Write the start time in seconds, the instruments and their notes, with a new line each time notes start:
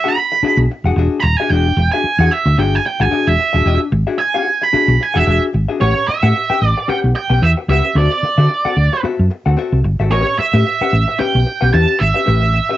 0.04 hollow-body jazz guitar D4 F#4 G#4 F#5
0.08 lead electric guitar B5
0.17 muted hollow-body jazz guitar stroke
0.32 muted hollow-body jazz guitar stroke
0.42 hollow-body jazz guitar D4 F#4 G#4 E5, muted fingered electric bass stroke
0.57 fingered electric bass B1
0.70 muted hollow-body jazz guitar stroke
0.84 fingered electric bass E1, hollow-body jazz guitar D4 F#4 G#4 F#5
0.96 fingered electric bass E1, hollow-body jazz guitar D4 F#4 G#4 E5
1.20 fingered electric bass D#1, lead electric guitar A#5 B5, muted hollow-body jazz guitar stroke
1.37 hollow-body jazz guitar F#4 G#4 E5, lead electric guitar G#5
1.41 hollow-body jazz guitar D4
1.49 fingered electric bass E1, hollow-body jazz guitar D4 F#4 G#4 E5, lead electric guitar G5
1.67 muted hollow-body jazz guitar stroke
1.77 fingered electric bass E1, muted hollow-body jazz guitar stroke
1.92 hollow-body jazz guitar D4 F#4 G#4 E5, lead electric guitar G#5
2.04 muted fingered electric bass stroke, muted hollow-body jazz guitar stroke
2.19 fingered electric bass E2, hollow-body jazz guitar D4 F#4 G#4 F#5
2.31 lead electric guitar E5, muted hollow-body jazz guitar stroke
2.46 fingered electric bass D2, muted hollow-body jazz guitar stroke
2.58 fingered electric bass G1, hollow-body jazz guitar D4 F#4 G#4 E5, lead electric guitar G5
2.75 lead electric guitar G#5
2.86 lead electric guitar G5, muted hollow-body jazz guitar stroke
3.00 fingered electric bass G#1, hollow-body jazz guitar D4 F#4 G#4 F#5, lead electric guitar G#5
3.11 hollow-body jazz guitar D4 F#4 G#4 E5, muted fingered electric bass stroke
3.27 fingered electric bass E1, lead electric guitar E5
3.38 muted hollow-body jazz guitar stroke
3.53 fingered electric bass D#1, hollow-body jazz guitar D4 F#4 G#4 E5
3.66 fingered electric bass E1, hollow-body jazz guitar D4 F#4 G#4 E5
3.80 muted hollow-body jazz guitar stroke
3.91 fingered electric bass G#1, muted hollow-body jazz guitar stroke
4.07 hollow-body jazz guitar D4 F#4 G#4 E5
4.19 lead electric guitar G#5, muted hollow-body jazz guitar stroke
4.34 hollow-body jazz guitar D4 F#4 G#4 F#5
4.46 muted hollow-body jazz guitar stroke
4.62 lead electric guitar B5, muted hollow-body jazz guitar stroke
4.73 hollow-body jazz guitar D4 F#4 G#4 E5, muted fingered electric bass stroke
4.88 fingered electric bass B1
5.00 lead electric guitar G#5, muted hollow-body jazz guitar stroke
5.14 fingered electric bass E1, hollow-body jazz guitar D4 F#4 G#4 F#5, lead electric guitar E5
5.27 fingered electric bass E1, hollow-body jazz guitar D4 F#4 G#4 E5
5.53 fingered electric bass G#1, muted hollow-body jazz guitar stroke
5.69 hollow-body jazz guitar D4 F#4 G#4 E5
5.80 fingered electric bass A1, hollow-body jazz guitar C#4 G4 B4 F#5, lead electric guitar C#5
5.95 muted hollow-body jazz guitar stroke
6.08 lead electric guitar E5, muted hollow-body jazz guitar stroke, muted fingered electric bass stroke
6.23 fingered electric bass A2, hollow-body jazz guitar C#4 G4 B4 F#5
6.35 muted hollow-body jazz guitar stroke
6.50 hollow-body jazz guitar C#4 G4 B4 G5, muted fingered electric bass stroke
6.62 fingered electric bass A1, muted hollow-body jazz guitar stroke
6.69 lead electric guitar D5
6.78 muted hollow-body jazz guitar stroke
6.88 hollow-body jazz guitar C#4 G4 B4 F#5, lead electric guitar G5, muted fingered electric bass stroke
7.04 fingered electric bass B1
7.15 lead electric guitar G5, muted hollow-body jazz guitar stroke
7.30 fingered electric bass B1, hollow-body jazz guitar C#4 G4 B4 G5
7.42 fingered electric bass E2, lead electric guitar E5, muted hollow-body jazz guitar stroke
7.58 muted hollow-body jazz guitar stroke
7.68 fingered electric bass C#2, hollow-body jazz guitar C#4 G4 B4 F#5, lead electric guitar E5
7.85 muted hollow-body jazz guitar stroke
7.95 fingered electric bass D2, hollow-body jazz guitar C4 F#4 A4 E5, lead electric guitar D5
8.11 muted hollow-body jazz guitar stroke
8.23 muted fingered electric bass stroke, muted hollow-body jazz guitar stroke
8.38 fingered electric bass D3, hollow-body jazz guitar C4 F#4 A4 E5
8.50 muted hollow-body jazz guitar stroke
8.65 hollow-body jazz guitar C4 F#4 A4 F#5, muted fingered electric bass stroke
8.77 fingered electric bass D2, muted hollow-body jazz guitar stroke
8.93 muted hollow-body jazz guitar stroke
9.03 hollow-body jazz guitar C4 F#4 A4 E5, muted fingered electric bass stroke
9.19 fingered electric bass F#2
9.30 muted hollow-body jazz guitar stroke
9.46 fingered electric bass D2, hollow-body jazz guitar C4 F#4 A4 F#5
9.57 hollow-body jazz guitar C4 F#4 A4 E5
9.72 fingered electric bass C2
9.84 fingered electric bass G1, muted hollow-body jazz guitar stroke
9.99 fingered electric bass G#1, hollow-body jazz guitar C4 F#4 A4 E5
10.12 fingered electric bass A1, hollow-body jazz guitar C#4 G4 B4 E5, lead electric guitar C#5
10.27 muted hollow-body jazz guitar stroke
10.39 lead electric guitar E5, muted fingered electric bass stroke, muted hollow-body jazz guitar stroke
10.53 fingered electric bass A2, hollow-body jazz guitar C#4 G4 B4 E5
10.66 muted hollow-body jazz guitar stroke
10.81 hollow-body jazz guitar C#4 G4 B4 F#5, muted fingered electric bass stroke
10.93 fingered electric bass A1, muted hollow-body jazz guitar stroke
11.08 muted hollow-body jazz guitar stroke
11.19 hollow-body jazz guitar C#4 G4 B4 E5, lead electric guitar G5, muted fingered electric bass stroke
11.35 fingered electric bass B1
11.46 muted hollow-body jazz guitar stroke
11.61 fingered electric bass B1, hollow-body jazz guitar C#4 G4 B4 F#5
11.73 fingered electric bass E2, hollow-body jazz guitar C#4 G4 B4 E5, lead electric guitar A5
12.00 fingered electric bass G#1, lead electric guitar E5, muted hollow-body jazz guitar stroke
12.14 hollow-body jazz guitar C#4 G4 B4 E5
12.26 fingered electric bass A1, hollow-body jazz guitar C#4 G4 B4 E5
12.41 muted hollow-body jazz guitar stroke
12.53 muted hollow-body jazz guitar stroke
12.69 hollow-body jazz guitar C#4 G4 B4 E5